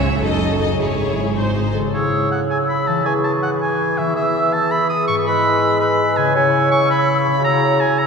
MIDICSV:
0, 0, Header, 1, 11, 480
1, 0, Start_track
1, 0, Key_signature, 4, "minor"
1, 0, Tempo, 376884
1, 1007, Time_signature, 6, 3, 24, 8
1, 4832, Tempo, 364964
1, 10453, End_track
2, 0, Start_track
2, 0, Title_t, "Flute"
2, 0, Program_c, 0, 73
2, 2476, Note_on_c, 0, 88, 39
2, 3136, Note_off_c, 0, 88, 0
2, 3189, Note_on_c, 0, 88, 39
2, 3897, Note_on_c, 0, 85, 42
2, 3916, Note_off_c, 0, 88, 0
2, 4597, Note_off_c, 0, 85, 0
2, 4604, Note_on_c, 0, 85, 43
2, 5320, Note_on_c, 0, 88, 47
2, 5340, Note_off_c, 0, 85, 0
2, 6034, Note_off_c, 0, 88, 0
2, 6042, Note_on_c, 0, 88, 50
2, 6750, Note_off_c, 0, 88, 0
2, 6772, Note_on_c, 0, 88, 52
2, 7469, Note_off_c, 0, 88, 0
2, 7475, Note_on_c, 0, 88, 50
2, 8183, Note_off_c, 0, 88, 0
2, 8192, Note_on_c, 0, 88, 60
2, 9310, Note_off_c, 0, 88, 0
2, 9634, Note_on_c, 0, 88, 49
2, 10337, Note_off_c, 0, 88, 0
2, 10359, Note_on_c, 0, 88, 47
2, 10453, Note_off_c, 0, 88, 0
2, 10453, End_track
3, 0, Start_track
3, 0, Title_t, "Oboe"
3, 0, Program_c, 1, 68
3, 2466, Note_on_c, 1, 73, 55
3, 2909, Note_off_c, 1, 73, 0
3, 2951, Note_on_c, 1, 78, 50
3, 3056, Note_off_c, 1, 78, 0
3, 3181, Note_on_c, 1, 80, 47
3, 3287, Note_off_c, 1, 80, 0
3, 3423, Note_on_c, 1, 83, 50
3, 3658, Note_on_c, 1, 81, 54
3, 3677, Note_off_c, 1, 83, 0
3, 3881, Note_off_c, 1, 81, 0
3, 3889, Note_on_c, 1, 80, 59
3, 3994, Note_off_c, 1, 80, 0
3, 4127, Note_on_c, 1, 81, 51
3, 4232, Note_off_c, 1, 81, 0
3, 4363, Note_on_c, 1, 78, 53
3, 4469, Note_off_c, 1, 78, 0
3, 4603, Note_on_c, 1, 80, 60
3, 5077, Note_on_c, 1, 76, 55
3, 5097, Note_off_c, 1, 80, 0
3, 5304, Note_off_c, 1, 76, 0
3, 5312, Note_on_c, 1, 76, 64
3, 5799, Note_on_c, 1, 81, 68
3, 5819, Note_off_c, 1, 76, 0
3, 6042, Note_on_c, 1, 83, 61
3, 6061, Note_off_c, 1, 81, 0
3, 6267, Note_off_c, 1, 83, 0
3, 6275, Note_on_c, 1, 87, 66
3, 6509, Note_off_c, 1, 87, 0
3, 6517, Note_on_c, 1, 85, 68
3, 6627, Note_off_c, 1, 85, 0
3, 6763, Note_on_c, 1, 83, 77
3, 7464, Note_off_c, 1, 83, 0
3, 7476, Note_on_c, 1, 83, 72
3, 7955, Note_on_c, 1, 80, 69
3, 7975, Note_off_c, 1, 83, 0
3, 8193, Note_off_c, 1, 80, 0
3, 8201, Note_on_c, 1, 80, 76
3, 8667, Note_off_c, 1, 80, 0
3, 8675, Note_on_c, 1, 85, 77
3, 8912, Note_off_c, 1, 85, 0
3, 8922, Note_on_c, 1, 83, 75
3, 9623, Note_off_c, 1, 83, 0
3, 9633, Note_on_c, 1, 82, 86
3, 10108, Note_on_c, 1, 80, 73
3, 10128, Note_off_c, 1, 82, 0
3, 10343, Note_on_c, 1, 82, 70
3, 10363, Note_off_c, 1, 80, 0
3, 10453, Note_off_c, 1, 82, 0
3, 10453, End_track
4, 0, Start_track
4, 0, Title_t, "Violin section"
4, 0, Program_c, 2, 48
4, 0, Note_on_c, 2, 76, 48
4, 267, Note_on_c, 2, 75, 52
4, 271, Note_off_c, 2, 76, 0
4, 751, Note_off_c, 2, 75, 0
4, 766, Note_on_c, 2, 75, 40
4, 1004, Note_off_c, 2, 75, 0
4, 1009, Note_on_c, 2, 73, 40
4, 1724, Note_off_c, 2, 73, 0
4, 10453, End_track
5, 0, Start_track
5, 0, Title_t, "Viola section"
5, 0, Program_c, 3, 48
5, 0, Note_on_c, 3, 73, 45
5, 259, Note_off_c, 3, 73, 0
5, 272, Note_on_c, 3, 69, 40
5, 993, Note_off_c, 3, 69, 0
5, 1014, Note_on_c, 3, 68, 32
5, 1679, Note_off_c, 3, 68, 0
5, 1748, Note_on_c, 3, 72, 41
5, 1969, Note_off_c, 3, 72, 0
5, 1990, Note_on_c, 3, 68, 35
5, 2223, Note_off_c, 3, 68, 0
5, 2232, Note_on_c, 3, 69, 36
5, 2468, Note_off_c, 3, 69, 0
5, 10453, End_track
6, 0, Start_track
6, 0, Title_t, "Clarinet"
6, 0, Program_c, 4, 71
6, 2463, Note_on_c, 4, 68, 38
6, 3129, Note_off_c, 4, 68, 0
6, 3194, Note_on_c, 4, 68, 35
6, 3880, Note_off_c, 4, 68, 0
6, 3887, Note_on_c, 4, 68, 47
6, 4581, Note_off_c, 4, 68, 0
6, 4609, Note_on_c, 4, 68, 41
6, 5304, Note_off_c, 4, 68, 0
6, 5312, Note_on_c, 4, 68, 50
6, 6024, Note_off_c, 4, 68, 0
6, 6044, Note_on_c, 4, 68, 42
6, 6751, Note_off_c, 4, 68, 0
6, 6782, Note_on_c, 4, 71, 52
6, 7474, Note_off_c, 4, 71, 0
6, 7482, Note_on_c, 4, 71, 51
6, 8202, Note_on_c, 4, 73, 58
6, 8222, Note_off_c, 4, 71, 0
6, 9637, Note_off_c, 4, 73, 0
6, 9647, Note_on_c, 4, 73, 52
6, 10344, Note_off_c, 4, 73, 0
6, 10357, Note_on_c, 4, 73, 49
6, 10453, Note_off_c, 4, 73, 0
6, 10453, End_track
7, 0, Start_track
7, 0, Title_t, "Violin section"
7, 0, Program_c, 5, 48
7, 0, Note_on_c, 5, 61, 35
7, 0, Note_on_c, 5, 68, 43
7, 222, Note_off_c, 5, 68, 0
7, 224, Note_off_c, 5, 61, 0
7, 273, Note_on_c, 5, 69, 32
7, 277, Note_on_c, 5, 63, 36
7, 957, Note_off_c, 5, 69, 0
7, 959, Note_off_c, 5, 63, 0
7, 1015, Note_on_c, 5, 64, 31
7, 1017, Note_on_c, 5, 68, 28
7, 1690, Note_off_c, 5, 64, 0
7, 1692, Note_off_c, 5, 68, 0
7, 1735, Note_on_c, 5, 63, 29
7, 1737, Note_on_c, 5, 72, 30
7, 2188, Note_off_c, 5, 63, 0
7, 2189, Note_off_c, 5, 72, 0
7, 10453, End_track
8, 0, Start_track
8, 0, Title_t, "Harp"
8, 0, Program_c, 6, 46
8, 0, Note_on_c, 6, 49, 41
8, 41, Note_on_c, 6, 61, 28
8, 46, Note_on_c, 6, 68, 29
8, 285, Note_on_c, 6, 42, 36
8, 293, Note_off_c, 6, 49, 0
8, 296, Note_off_c, 6, 61, 0
8, 299, Note_off_c, 6, 68, 0
8, 525, Note_on_c, 6, 54, 31
8, 767, Note_on_c, 6, 63, 27
8, 778, Note_on_c, 6, 69, 28
8, 1015, Note_on_c, 6, 44, 32
8, 1031, Note_off_c, 6, 54, 0
8, 1031, Note_off_c, 6, 63, 0
8, 1033, Note_off_c, 6, 69, 0
8, 1034, Note_off_c, 6, 42, 0
8, 1260, Note_on_c, 6, 61, 28
8, 1507, Note_on_c, 6, 64, 23
8, 1512, Note_on_c, 6, 68, 27
8, 1730, Note_off_c, 6, 44, 0
8, 1745, Note_on_c, 6, 44, 31
8, 1761, Note_off_c, 6, 61, 0
8, 1763, Note_off_c, 6, 64, 0
8, 1988, Note_on_c, 6, 60, 26
8, 2221, Note_off_c, 6, 68, 0
8, 2230, Note_on_c, 6, 63, 25
8, 2238, Note_on_c, 6, 49, 33
8, 2240, Note_on_c, 6, 68, 28
8, 2298, Note_on_c, 6, 61, 30
8, 2358, Note_on_c, 6, 64, 27
8, 2398, Note_off_c, 6, 68, 0
8, 2413, Note_on_c, 6, 68, 27
8, 2486, Note_off_c, 6, 44, 0
8, 2486, Note_off_c, 6, 60, 0
8, 2486, Note_off_c, 6, 63, 0
8, 3664, Note_on_c, 6, 52, 38
8, 3707, Note_off_c, 6, 61, 0
8, 3722, Note_on_c, 6, 61, 29
8, 3761, Note_off_c, 6, 64, 0
8, 3776, Note_on_c, 6, 64, 29
8, 3794, Note_off_c, 6, 49, 0
8, 3820, Note_off_c, 6, 68, 0
8, 3835, Note_on_c, 6, 68, 33
8, 5073, Note_off_c, 6, 52, 0
8, 5089, Note_on_c, 6, 52, 40
8, 5145, Note_on_c, 6, 59, 33
8, 5187, Note_off_c, 6, 64, 0
8, 5202, Note_on_c, 6, 64, 35
8, 5250, Note_off_c, 6, 68, 0
8, 5252, Note_off_c, 6, 61, 0
8, 5266, Note_on_c, 6, 68, 33
8, 6527, Note_on_c, 6, 44, 45
8, 6570, Note_off_c, 6, 59, 0
8, 6586, Note_on_c, 6, 59, 36
8, 6631, Note_off_c, 6, 64, 0
8, 6647, Note_on_c, 6, 64, 37
8, 6669, Note_off_c, 6, 52, 0
8, 6691, Note_off_c, 6, 68, 0
8, 6707, Note_on_c, 6, 68, 41
8, 7964, Note_on_c, 6, 49, 48
8, 8027, Note_on_c, 6, 61, 40
8, 8065, Note_off_c, 6, 64, 0
8, 8081, Note_on_c, 6, 64, 39
8, 8100, Note_off_c, 6, 44, 0
8, 8129, Note_off_c, 6, 59, 0
8, 8130, Note_off_c, 6, 68, 0
8, 8145, Note_on_c, 6, 68, 36
8, 9390, Note_off_c, 6, 49, 0
8, 9406, Note_on_c, 6, 49, 42
8, 9447, Note_off_c, 6, 61, 0
8, 9463, Note_on_c, 6, 61, 41
8, 9508, Note_off_c, 6, 64, 0
8, 9524, Note_on_c, 6, 64, 38
8, 9581, Note_on_c, 6, 66, 43
8, 9628, Note_off_c, 6, 68, 0
8, 10453, Note_off_c, 6, 49, 0
8, 10453, Note_off_c, 6, 61, 0
8, 10453, Note_off_c, 6, 64, 0
8, 10453, Note_off_c, 6, 66, 0
8, 10453, End_track
9, 0, Start_track
9, 0, Title_t, "Bassoon"
9, 0, Program_c, 7, 70
9, 2467, Note_on_c, 7, 49, 45
9, 3897, Note_on_c, 7, 52, 45
9, 3916, Note_off_c, 7, 49, 0
9, 6769, Note_off_c, 7, 52, 0
9, 6777, Note_on_c, 7, 56, 61
9, 8211, Note_on_c, 7, 49, 58
9, 8231, Note_off_c, 7, 56, 0
9, 10453, Note_off_c, 7, 49, 0
9, 10453, End_track
10, 0, Start_track
10, 0, Title_t, "Cello section"
10, 0, Program_c, 8, 48
10, 0, Note_on_c, 8, 49, 45
10, 273, Note_off_c, 8, 49, 0
10, 275, Note_on_c, 8, 42, 39
10, 1009, Note_off_c, 8, 42, 0
10, 1012, Note_on_c, 8, 44, 32
10, 2201, Note_off_c, 8, 44, 0
10, 10453, End_track
11, 0, Start_track
11, 0, Title_t, "Double bass section"
11, 0, Program_c, 10, 48
11, 0, Note_on_c, 10, 37, 44
11, 276, Note_off_c, 10, 37, 0
11, 281, Note_on_c, 10, 30, 39
11, 1013, Note_off_c, 10, 30, 0
11, 1018, Note_on_c, 10, 32, 36
11, 2204, Note_off_c, 10, 32, 0
11, 10453, End_track
0, 0, End_of_file